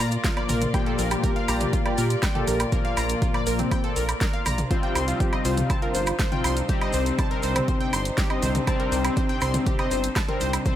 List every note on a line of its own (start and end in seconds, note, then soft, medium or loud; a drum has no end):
0.00 0.17 A#2 medium
0.00 4.67 A#3 medium
0.00 4.67 F4 medium
0.00 4.67 D5 medium
0.11 closed hi-hat medium
0.11 maracas medium
0.24 0.31 F4 medium
0.24 kick loud
0.24 snare loud
0.24 closed hi-hat medium
0.24 maracas soft
0.37 0.71 A#2 medium
0.37 0.71 F3 medium
0.37 0.71 A#3 medium
0.37 0.43 D5 medium
0.37 closed hi-hat soft
0.37 low woodblock medium
0.49 0.67 A#1 loud
0.49 0.55 A#4 medium
0.49 mid tom medium
0.49 open hi-hat loud
0.49 maracas loud
0.61 closed hi-hat medium
0.61 mid tom medium
0.61 maracas soft
0.74 1.95 A#2 loud
0.74 1.95 F3 loud
0.74 1.95 A#3 loud
0.74 0.97 G4 loud
0.74 0.80 G5 medium
0.74 kick loud
0.74 closed hi-hat medium
0.74 low woodblock medium
0.74 maracas soft
0.86 0.93 A4 medium
0.86 closed hi-hat soft
0.99 1.17 A#1 loud
0.99 1.08 A#4 medium
0.99 open hi-hat loud
0.99 maracas medium
1.11 1.34 G4 loud
1.11 closed hi-hat medium
1.11 low woodblock medium
1.11 maracas medium
1.24 1.27 A#4 medium
1.24 kick loud
1.24 closed hi-hat medium
1.24 maracas soft
1.36 1.45 F5 medium
1.36 closed hi-hat soft
1.48 1.66 A#1 medium
1.48 1.72 G4 loud
1.48 1.55 A#5 medium
1.48 open hi-hat loud
1.48 low woodblock medium
1.48 maracas loud
1.60 closed hi-hat medium
1.60 mid tom medium
1.60 maracas soft
1.73 1.79 F4 medium
1.73 kick loud
1.73 closed hi-hat medium
1.73 maracas soft
1.86 2.16 G4 loud
1.86 1.92 D5 medium
1.86 closed hi-hat soft
1.86 low woodblock medium
1.98 2.16 A#2 medium
1.98 2.04 A#4 medium
1.98 open hi-hat loud
1.98 maracas medium
2.10 closed hi-hat medium
2.10 maracas medium
2.23 2.29 G5 medium
2.23 kick loud
2.23 snare loud
2.23 closed hi-hat medium
2.23 low woodblock medium
2.23 maracas soft
2.35 2.69 A#2 medium
2.35 2.69 F3 medium
2.35 2.69 A#3 medium
2.35 2.58 G4 loud
2.35 2.41 A4 medium
2.35 closed hi-hat soft
2.35 mid tom medium
2.48 2.65 A#1 loud
2.48 2.57 A#4 medium
2.48 open hi-hat loud
2.48 maracas loud
2.60 closed hi-hat medium
2.60 low woodblock medium
2.60 maracas medium
2.72 3.93 A#2 loud
2.72 3.93 F3 medium
2.72 3.93 A#3 loud
2.72 2.76 A#4 medium
2.72 kick loud
2.72 closed hi-hat medium
2.72 maracas soft
2.85 2.94 F5 medium
2.85 closed hi-hat soft
2.97 3.15 A#1 loud
2.97 3.03 A#5 medium
2.97 open hi-hat loud
2.97 low woodblock medium
2.97 maracas medium
3.09 closed hi-hat medium
3.09 maracas medium
3.22 3.28 F4 medium
3.22 kick loud
3.22 closed hi-hat medium
3.22 maracas soft
3.34 3.41 D5 medium
3.34 closed hi-hat soft
3.34 low woodblock medium
3.46 3.64 A#1 medium
3.46 3.53 A#4 medium
3.46 open hi-hat loud
3.46 maracas medium
3.59 3.82 C4 loud
3.59 closed hi-hat medium
3.59 mid tom medium
3.59 maracas medium
3.71 3.78 G5 medium
3.71 kick loud
3.71 closed hi-hat medium
3.71 low woodblock medium
3.71 maracas soft
3.84 3.90 A4 medium
3.84 closed hi-hat soft
3.96 4.14 A#1 medium
3.96 4.06 A#4 medium
3.96 open hi-hat loud
3.96 maracas loud
4.09 closed hi-hat medium
4.09 low woodblock medium
4.09 maracas medium
4.21 4.25 A#4 medium
4.21 kick loud
4.21 snare loud
4.21 closed hi-hat medium
4.21 maracas soft
4.33 4.43 F5 medium
4.33 closed hi-hat soft
4.46 4.64 A#1 loud
4.46 4.52 A#5 medium
4.46 mid tom medium
4.46 open hi-hat loud
4.46 low woodblock medium
4.46 maracas loud
4.58 closed hi-hat medium
4.58 mid tom medium
4.58 maracas medium
4.71 5.92 C3 loud
4.71 5.92 G3 medium
4.71 5.92 C4 loud
4.71 10.76 D4 medium
4.71 10.76 D#4 medium
4.71 4.94 F4 loud
4.71 4.74 C5 medium
4.71 10.76 C5 medium
4.71 kick loud
4.71 closed hi-hat medium
4.71 maracas soft
4.83 4.92 G5 medium
4.83 closed hi-hat soft
4.95 5.13 C2 loud
4.95 5.02 C6 medium
4.95 open hi-hat loud
4.95 low woodblock medium
4.95 maracas medium
5.08 5.31 F4 loud
5.08 closed hi-hat medium
5.08 maracas medium
5.20 5.26 G4 medium
5.20 kick loud
5.20 closed hi-hat medium
5.20 maracas soft
5.33 5.39 D#5 medium
5.33 closed hi-hat soft
5.33 low woodblock medium
5.45 5.63 C2 medium
5.45 5.68 F4 loud
5.45 5.51 C5 medium
5.45 open hi-hat loud
5.45 maracas medium
5.57 closed hi-hat medium
5.57 mid tom medium
5.57 maracas soft
5.70 5.76 A5 medium
5.70 kick loud
5.70 closed hi-hat medium
5.70 low woodblock medium
5.70 maracas soft
5.82 6.13 F4 loud
5.82 5.88 A#4 medium
5.82 closed hi-hat soft
5.94 6.12 G1 medium
5.94 6.04 C5 medium
5.94 open hi-hat loud
5.94 maracas loud
6.06 closed hi-hat medium
6.06 low woodblock medium
6.06 maracas medium
6.19 6.23 C5 medium
6.19 kick loud
6.19 snare loud
6.19 closed hi-hat medium
6.19 maracas soft
6.32 6.66 C3 medium
6.32 6.66 G3 medium
6.32 6.66 C4 medium
6.32 6.55 F4 loud
6.32 6.41 G5 medium
6.32 closed hi-hat soft
6.32 mid tom medium
6.44 6.62 C2 loud
6.44 6.50 C6 medium
6.44 open hi-hat loud
6.44 low woodblock medium
6.44 maracas medium
6.57 closed hi-hat medium
6.57 maracas medium
6.69 7.90 C3 loud
6.69 7.90 G3 medium
6.69 7.90 C4 loud
6.69 6.75 G4 medium
6.69 kick loud
6.69 closed hi-hat medium
6.69 maracas soft
6.81 6.88 D#5 medium
6.81 closed hi-hat soft
6.81 low woodblock medium
6.93 7.12 C2 loud
6.93 7.00 C5 medium
6.93 open hi-hat loud
6.93 maracas medium
7.06 closed hi-hat medium
7.06 maracas medium
7.18 7.25 A5 medium
7.18 kick loud
7.18 closed hi-hat medium
7.18 low woodblock medium
7.18 maracas soft
7.31 7.37 A#4 medium
7.31 closed hi-hat soft
7.43 7.61 C2 medium
7.43 7.53 C5 medium
7.43 open hi-hat loud
7.43 maracas medium
7.55 7.79 C4 loud
7.55 closed hi-hat medium
7.55 mid tom loud
7.55 low woodblock medium
7.55 maracas soft
7.68 7.72 C5 medium
7.68 kick loud
7.68 closed hi-hat medium
7.68 maracas soft
7.81 7.90 G5 medium
7.81 closed hi-hat soft
7.93 8.11 G1 medium
7.93 7.99 C6 medium
7.93 open hi-hat loud
7.93 low woodblock medium
7.93 maracas medium
8.05 closed hi-hat medium
8.05 maracas soft
8.18 8.24 G4 medium
8.18 kick loud
8.18 snare loud
8.18 closed hi-hat medium
8.18 maracas soft
8.30 8.64 C3 medium
8.30 8.64 G3 medium
8.30 8.64 C4 medium
8.30 8.36 D#5 medium
8.30 closed hi-hat soft
8.30 low woodblock medium
8.42 8.60 C2 loud
8.42 8.49 C5 medium
8.42 mid tom medium
8.42 open hi-hat loud
8.42 maracas medium
8.55 closed hi-hat medium
8.55 mid tom loud
8.55 maracas soft
8.67 9.88 C3 loud
8.67 9.88 G3 loud
8.67 8.91 C4 loud
8.67 9.88 C4 loud
8.67 8.74 A5 medium
8.67 kick loud
8.67 closed hi-hat medium
8.67 low woodblock medium
8.67 maracas soft
8.80 8.86 A#4 medium
8.80 closed hi-hat soft
8.92 9.10 C2 loud
8.92 9.01 C5 medium
8.92 open hi-hat loud
8.92 maracas medium
9.04 9.28 C4 loud
9.04 closed hi-hat medium
9.04 low woodblock medium
9.04 maracas medium
9.17 9.21 C5 medium
9.17 kick loud
9.17 closed hi-hat medium
9.17 maracas soft
9.29 9.39 G5 medium
9.29 closed hi-hat soft
9.41 9.59 C2 medium
9.41 9.65 C4 loud
9.41 9.48 C6 medium
9.41 open hi-hat loud
9.41 low woodblock medium
9.41 maracas medium
9.54 closed hi-hat medium
9.54 mid tom loud
9.54 maracas medium
9.66 9.73 G4 medium
9.66 kick loud
9.66 closed hi-hat medium
9.66 maracas soft
9.79 10.10 C4 loud
9.79 9.85 D#5 medium
9.79 closed hi-hat soft
9.79 low woodblock medium
9.91 10.09 G1 medium
9.91 9.98 C5 medium
9.91 open hi-hat loud
9.91 maracas medium
10.04 closed hi-hat medium
10.04 maracas soft
10.15 10.22 A5 medium
10.15 kick loud
10.15 snare loud
10.15 closed hi-hat medium
10.15 low woodblock medium
10.15 maracas soft
10.28 10.63 C3 medium
10.28 10.63 G3 medium
10.28 10.52 C4 loud
10.28 10.63 C4 medium
10.28 10.35 A#4 medium
10.28 closed hi-hat soft
10.28 mid tom medium
10.41 10.59 C2 loud
10.41 10.50 C5 medium
10.41 open hi-hat loud
10.41 maracas medium
10.53 closed hi-hat medium
10.53 low woodblock medium
10.53 maracas soft
10.65 10.76 C3 loud
10.65 10.76 G3 medium
10.65 10.76 C4 loud
10.65 10.69 C5 medium
10.65 kick loud
10.65 closed hi-hat medium
10.65 maracas soft